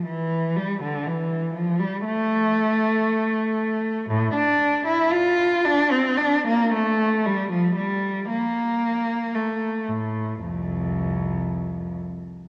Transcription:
X:1
M:4/4
L:1/16
Q:1/4=57
K:F
V:1 name="Cello" clef=bass
E,2 G, D, E,2 F, G, A,8 | A,, D2 E F2 D C D B, A,2 G, F, G,2 | B,4 A,2 A,,2 [C,,F,,]6 z2 |]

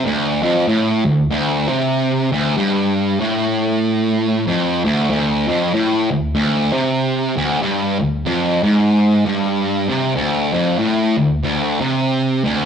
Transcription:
X:1
M:4/4
L:1/8
Q:"Swing" 1/4=95
K:Dm
V:1 name="Distorted electric guitar" clef=bass
D,, F,, A,, D,, D,, C,2 D,, | G,,2 A,,4 F,, D,, | D,, F,, A,, D,, D,, C,2 D,, | G,, D,, F,, ^G,,2 =G,,2 C, |
D,, F,, A,, D,, D,, C,2 D,, |]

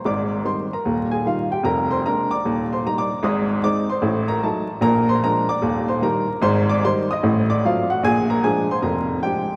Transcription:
X:1
M:4/4
L:1/16
Q:"Swing" 1/4=150
K:Eb
V:1 name="Upright piano"
[dd']4 [cc']2 [Bb]4 [Aa]2 [Ff]2 [Gg]2 | [Bb]2 [cc']2 [Bb]2 [dd']4 [cc']2 b [dd']3 | [ee']4 [dd']2 [cc']4 [Bb]2 [=A=a]2 z2 | [Bb]2 [cc']2 [Bb]2 [dd']4 [cc']2 [Bb]4 |
[cc']2 [dd']2 [cc']2 [ee']4 [dd']2 [Ff]2 [^F^f]2 | [Aa]2 [Bb]2 [Aa]2 [cc']2 [Bb]4 [Gg]4 |]
V:2 name="Upright piano" clef=bass
[A,,,A,,]4 [E,G,C]4 [E,,,E,,]4 [E,G,E]4 | [F,,,F,,]4 [A,B,D]4 [E,,,E,,]4 [G,B,E]4 | [A,,,A,,]4 [A,CE]4 [=A,,,=A,,]4 [^F,=A,E]4 | [B,,,B,,]4 [F,A,D]4 [E,,,E,,]4 [E,G,E]4 |
[A,,,A,,]4 [E,G,E]4 [=A,,,=A,,]4 [^F,=A,C]4 | [B,,,B,,]4 [F,A,D]4 [F,,,F,,]4 [F,A,D]4 |]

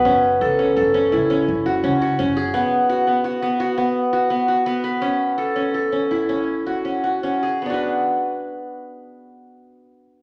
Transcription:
X:1
M:7/4
L:1/8
Q:1/4=168
K:Bdor
V:1 name="Qanun"
C2 A C A C E C2 F C F C G | B,2 F B, F B, F B,2 F B, F B, B | C2 A C A C E C2 F C F C G | [B,DFB]12- [B,DFB]2 |]
V:2 name="Upright bass" clef=bass
F,,,2 C,,2 F,,,2 C,,2 F,,,2 C,,2 F,,,2 | z12 z2 | z12 z2 | z12 z2 |]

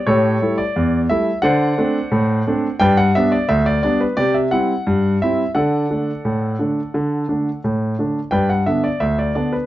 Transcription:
X:1
M:2/4
L:1/16
Q:1/4=87
K:G
V:1 name="Grand piano"
[GA^c]3 d3 e2 | [cdf]8 | [Bdg] f e d e d d B | [Gd] e f4 e2 |
[Adf]8- | [Adf]4 z4 | [Bdg] f e d e d d B |]
V:2 name="Grand piano"
A,,2 [G,A,E]2 E,,2 [G,A,E]2 | D,2 [A,CD]2 A,,2 [A,CD]2 | G,,2 [G,B,D]2 D,,2 [G,B,D]2 | C,2 [G,CE]2 G,,2 [G,CE]2 |
D,2 [D,A,D]2 A,,2 [D,A,D]2 | D,2 [D,A,D]2 A,,2 [D,A,D]2 | G,,2 [D,B,D]2 D,,2 [D,B,D]2 |]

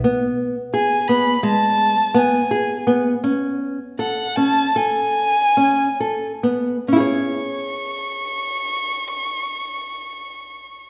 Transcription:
X:1
M:9/8
L:1/8
Q:3/8=50
K:Alyd
V:1 name="Violin"
z2 g b a2 g2 z | z2 f a g4 z | c'8- c' |]
V:2 name="Nylon-string guitar"
B,2 G B, G,2 B, G B, | C2 A C A2 C A B, | [CEGc]8- [CEGc] |]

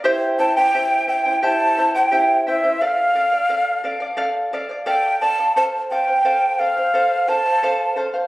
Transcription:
X:1
M:4/4
L:1/16
Q:1/4=87
K:Dm
V:1 name="Quena"
z2 a g3 g2 a3 g3 e2 | f8 z4 g2 a2 | a2 g4 f4 a4 z2 |]
V:2 name="Charango"
[EGceg]2 [Eceg] [Ecg] [EGceg]2 [Eceg] [Ecg] [EGceg]2 [Eceg] [Ecg] [EGceg]2 [Eceg] [Ecg] | [Adf]2 [Adf] [df] [Adf]2 [Adf] [df] [Adf]2 [Adf] [df] [Adf]2 [Adf] [df] | [Acf]2 [Acf] [cf] [Acf]2 [Acf] [cf] [Acf]2 [Acf] [cf] [Acf]2 [Acf] [cf] |]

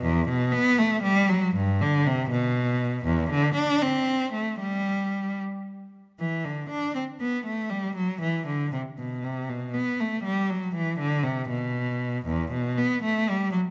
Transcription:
X:1
M:6/8
L:1/8
Q:3/8=79
K:Bphr
V:1 name="Cello" clef=bass
E,, B,, B, A, G, F, | G,, D, C, B,,3 | E,, D, D C2 A, | G,3 z3 |
E, D, D C B, A, | G, F, E, D, C, B,, | C, B,, B, A, G, F, | E, D, C, B,,3 |
E,, B,, B, A, G, F, |]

